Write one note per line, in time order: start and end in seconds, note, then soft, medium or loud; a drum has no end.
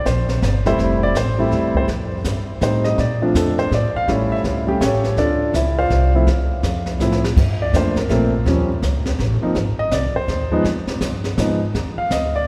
0.05 0.41 A#1 medium
0.05 0.62 C5 medium
0.05 kick soft
0.05 snare soft
0.05 hi-hat pedal soft
0.29 snare soft
0.42 0.78 G1 medium
0.42 kick soft
0.42 snare medium
0.42 hi-hat pedal soft
0.65 1.13 G3 medium
0.65 1.14 A3 medium
0.65 1.14 C4 medium
0.65 1.14 E4 medium
0.65 0.79 C5 medium
0.65 snare soft
0.78 1.14 F1 medium
0.78 brush sweep soft
0.78 kick soft
0.78 snare soft
1.03 1.16 D5 medium
1.15 1.51 A1 medium
1.15 1.72 C5 medium
1.15 kick soft
1.15 snare medium
1.15 hi-hat pedal medium
1.39 1.86 G3 medium
1.39 1.87 A3 medium
1.39 1.87 C4 medium
1.39 1.87 E4 medium
1.51 1.87 E2 medium
1.51 kick soft
1.51 snare soft
1.75 1.85 C5 medium
1.75 kick soft
1.88 2.24 F2 medium
1.88 brush sweep soft
1.88 kick soft
1.88 snare soft
2.24 2.60 G2 medium
2.24 kick soft
2.24 snare soft
2.24 hi-hat pedal medium
2.61 2.97 A2 medium
2.61 2.98 G3 soft
2.61 2.99 A3 soft
2.61 2.99 C4 soft
2.61 2.99 D#4 medium
2.61 2.85 C5 medium
2.61 kick soft
2.61 snare medium
2.61 hi-hat pedal medium
2.84 2.98 D#5 medium
2.84 snare soft
2.98 3.34 A#2 medium
2.98 3.21 D5 medium
2.98 brush sweep soft
2.98 kick soft
2.98 snare soft
3.22 3.69 F3 medium
3.22 3.69 A3 medium
3.22 3.69 C4 medium
3.22 3.69 D4 medium
3.22 3.35 F4 medium
3.34 3.70 F2 medium
3.34 3.58 A4 medium
3.34 kick soft
3.34 snare medium
3.34 hi-hat pedal medium
3.58 3.72 C5 medium
3.58 snare soft
3.71 3.93 A2 medium
3.71 3.95 D5 medium
3.71 kick soft
3.71 snare soft
3.95 4.09 F5 medium
3.95 muted upright bass stroke soft
4.08 4.43 A1 medium
4.08 4.63 G3 medium
4.08 4.63 A3 medium
4.08 4.63 C#4 medium
4.08 4.63 E4 medium
4.08 4.31 C#5 medium
4.08 brush sweep soft
4.08 kick soft
4.08 snare soft
4.32 4.40 E5 medium
4.44 4.80 C#2 medium
4.44 kick soft
4.44 snare soft
4.67 4.79 G3 medium
4.67 4.80 A3 medium
4.67 4.80 C#4 medium
4.67 4.80 G4 medium
4.81 5.16 A1 medium
4.81 5.15 C#4 medium
4.81 5.16 G4 medium
4.81 5.15 A4 medium
4.81 5.15 C#5 medium
4.81 kick soft
4.81 snare medium
4.81 hi-hat pedal medium
5.04 snare soft
5.17 5.53 D2 medium
5.17 5.52 D4 medium
5.17 5.52 F4 medium
5.17 5.52 A4 medium
5.17 5.52 D5 medium
5.17 brush sweep soft
5.17 kick soft
5.17 snare soft
5.53 5.89 C#2 medium
5.53 5.77 E4 medium
5.53 5.77 E5 medium
5.53 kick soft
5.53 snare medium
5.53 hi-hat pedal medium
5.79 6.12 F4 medium
5.79 6.12 C5 medium
5.79 6.12 D5 medium
5.79 6.12 F5 medium
5.90 6.26 C2 medium
5.90 kick soft
5.90 snare soft
6.15 6.26 F3 medium
6.15 6.27 A3 medium
6.15 6.27 C4 medium
6.15 6.27 E4 medium
6.27 6.62 D2 medium
6.27 brush sweep soft
6.27 kick soft
6.27 snare soft
6.63 6.99 F2 medium
6.63 kick soft
6.63 snare medium
6.63 hi-hat pedal medium
6.86 snare soft
7.00 7.35 A2 medium
7.00 7.21 F3 medium
7.00 7.21 A3 medium
7.00 7.21 C4 medium
7.00 7.22 E4 medium
7.00 snare soft
7.00 hi-hat pedal medium
7.12 snare medium
7.24 snare medium
7.36 7.72 G2 medium
7.36 brush sweep soft
7.36 kick medium
7.36 snare soft
7.36 crash medium
7.62 7.74 D5 medium
7.73 7.94 F2 medium
7.73 7.94 F3 medium
7.73 7.94 A3 medium
7.73 7.94 A#3 medium
7.73 7.95 D4 medium
7.73 7.97 C5 medium
7.73 kick soft
7.73 snare medium
7.73 hi-hat pedal soft
7.95 8.43 A#4 medium
7.95 muted upright bass stroke soft
7.95 snare soft
8.09 8.45 A#1 medium
8.09 8.31 F3 medium
8.09 8.31 A3 medium
8.09 8.31 A#3 medium
8.09 8.31 C4 medium
8.09 kick soft
8.09 snare soft
8.46 8.81 D#2 medium
8.46 8.67 F3 medium
8.46 8.68 G3 medium
8.46 8.68 C4 medium
8.46 8.68 C#4 medium
8.46 brush sweep soft
8.46 kick soft
8.46 snare soft
8.82 9.18 C#2 medium
8.82 kick soft
8.82 snare medium
8.82 hi-hat pedal soft
9.06 snare soft
9.19 9.40 A1 medium
9.19 kick soft
9.19 snare soft
9.42 9.54 F3 medium
9.42 9.55 A#3 medium
9.42 9.55 C4 medium
9.42 9.55 D#4 medium
9.42 muted upright bass stroke soft
9.55 9.91 G#1 medium
9.55 brush sweep soft
9.55 kick soft
9.55 snare soft
9.79 9.92 D#5 medium
9.91 10.13 C2 medium
9.91 10.15 D5 medium
9.91 kick soft
9.91 snare medium
9.91 hi-hat pedal soft
10.15 10.62 C5 medium
10.15 muted upright bass stroke soft
10.28 10.63 D#2 medium
10.28 kick soft
10.28 snare soft
10.52 10.64 F3 medium
10.52 10.64 G#3 medium
10.52 10.65 B3 medium
10.52 10.65 D#4 medium
10.64 10.86 F2 medium
10.64 brush sweep soft
10.64 kick soft
10.64 snare soft
10.87 muted upright bass stroke soft
10.87 snare soft
11.01 11.37 G2 medium
11.01 kick soft
11.01 snare medium
11.01 hi-hat pedal medium
11.24 snare soft
11.38 11.73 G#2 medium
11.38 11.59 F3 medium
11.38 11.59 G#3 medium
11.38 11.59 B3 medium
11.38 11.60 D#4 medium
11.38 kick soft
11.38 snare medium
11.38 hi-hat pedal medium
11.74 11.96 D#2 medium
11.74 brush sweep medium
11.74 kick soft
11.74 snare soft
11.97 12.11 F5 medium
11.97 muted upright bass stroke soft
12.10 12.46 D2 medium
12.10 12.34 D#5 medium
12.10 kick soft
12.10 snare medium
12.10 hi-hat pedal medium
12.36 12.47 D5 medium